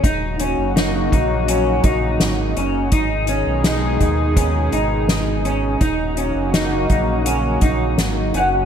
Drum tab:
HH |xxxxxxxx|xxxxxxxx|xxxxxxxx|
SD |--o---o-|--o---o-|--o---o-|
BD |o--o-o--|o--oo---|o--o-o--|